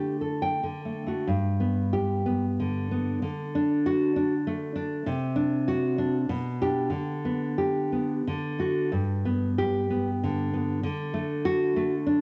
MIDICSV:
0, 0, Header, 1, 2, 480
1, 0, Start_track
1, 0, Key_signature, 1, "major"
1, 0, Tempo, 652174
1, 952, Time_signature, 3, 2, 24, 8
1, 1899, Tempo, 618557
1, 4779, Tempo, 657895
1, 7179, Tempo, 636943
1, 8139, Tempo, 609756
1, 9206, End_track
2, 0, Start_track
2, 0, Title_t, "Nylon-string guitar"
2, 0, Program_c, 0, 24
2, 0, Note_on_c, 0, 50, 58
2, 0, Note_on_c, 0, 57, 47
2, 0, Note_on_c, 0, 62, 46
2, 0, Note_on_c, 0, 67, 52
2, 152, Note_off_c, 0, 67, 0
2, 155, Note_on_c, 0, 69, 48
2, 309, Note_on_c, 0, 79, 73
2, 388, Note_off_c, 0, 62, 0
2, 440, Note_off_c, 0, 50, 0
2, 464, Note_off_c, 0, 57, 0
2, 466, Note_on_c, 0, 50, 58
2, 472, Note_off_c, 0, 79, 0
2, 477, Note_off_c, 0, 69, 0
2, 627, Note_on_c, 0, 57, 47
2, 776, Note_off_c, 0, 57, 0
2, 785, Note_on_c, 0, 57, 45
2, 795, Note_on_c, 0, 66, 62
2, 931, Note_off_c, 0, 57, 0
2, 935, Note_off_c, 0, 50, 0
2, 937, Note_off_c, 0, 66, 0
2, 938, Note_on_c, 0, 43, 73
2, 1178, Note_on_c, 0, 59, 62
2, 1420, Note_on_c, 0, 67, 83
2, 1653, Note_off_c, 0, 59, 0
2, 1662, Note_on_c, 0, 59, 68
2, 1802, Note_off_c, 0, 67, 0
2, 1911, Note_on_c, 0, 50, 67
2, 2148, Note_off_c, 0, 59, 0
2, 2157, Note_on_c, 0, 59, 67
2, 2346, Note_off_c, 0, 43, 0
2, 2387, Note_off_c, 0, 50, 0
2, 2392, Note_off_c, 0, 59, 0
2, 2397, Note_on_c, 0, 50, 78
2, 2652, Note_on_c, 0, 62, 72
2, 2892, Note_on_c, 0, 66, 93
2, 3116, Note_off_c, 0, 62, 0
2, 3125, Note_on_c, 0, 62, 74
2, 3266, Note_off_c, 0, 66, 0
2, 3365, Note_on_c, 0, 57, 74
2, 3578, Note_off_c, 0, 62, 0
2, 3588, Note_on_c, 0, 62, 80
2, 3797, Note_off_c, 0, 50, 0
2, 3823, Note_off_c, 0, 62, 0
2, 3826, Note_on_c, 0, 48, 96
2, 3829, Note_off_c, 0, 57, 0
2, 4054, Note_on_c, 0, 62, 83
2, 4304, Note_on_c, 0, 66, 107
2, 4530, Note_off_c, 0, 62, 0
2, 4539, Note_on_c, 0, 62, 80
2, 4685, Note_off_c, 0, 66, 0
2, 4753, Note_off_c, 0, 48, 0
2, 4779, Note_off_c, 0, 62, 0
2, 4780, Note_on_c, 0, 47, 92
2, 5015, Note_on_c, 0, 62, 71
2, 5017, Note_on_c, 0, 67, 99
2, 5222, Note_on_c, 0, 50, 76
2, 5224, Note_off_c, 0, 67, 0
2, 5225, Note_off_c, 0, 62, 0
2, 5231, Note_off_c, 0, 47, 0
2, 5478, Note_on_c, 0, 59, 64
2, 5719, Note_on_c, 0, 67, 78
2, 5961, Note_off_c, 0, 59, 0
2, 5969, Note_on_c, 0, 59, 59
2, 6116, Note_off_c, 0, 67, 0
2, 6179, Note_off_c, 0, 50, 0
2, 6216, Note_off_c, 0, 59, 0
2, 6226, Note_on_c, 0, 50, 78
2, 6454, Note_on_c, 0, 57, 58
2, 6461, Note_on_c, 0, 66, 80
2, 6673, Note_off_c, 0, 57, 0
2, 6677, Note_off_c, 0, 66, 0
2, 6691, Note_off_c, 0, 50, 0
2, 6696, Note_on_c, 0, 43, 81
2, 6940, Note_on_c, 0, 59, 69
2, 7181, Note_on_c, 0, 67, 93
2, 7412, Note_off_c, 0, 59, 0
2, 7421, Note_on_c, 0, 59, 69
2, 7565, Note_off_c, 0, 67, 0
2, 7672, Note_on_c, 0, 50, 72
2, 7890, Note_off_c, 0, 59, 0
2, 7899, Note_on_c, 0, 59, 76
2, 8106, Note_off_c, 0, 43, 0
2, 8114, Note_off_c, 0, 50, 0
2, 8123, Note_on_c, 0, 50, 90
2, 8139, Note_off_c, 0, 59, 0
2, 8362, Note_on_c, 0, 57, 75
2, 8609, Note_on_c, 0, 66, 104
2, 8846, Note_off_c, 0, 57, 0
2, 8855, Note_on_c, 0, 57, 83
2, 8997, Note_off_c, 0, 66, 0
2, 9092, Note_on_c, 0, 62, 78
2, 9206, Note_off_c, 0, 50, 0
2, 9206, Note_off_c, 0, 57, 0
2, 9206, Note_off_c, 0, 62, 0
2, 9206, End_track
0, 0, End_of_file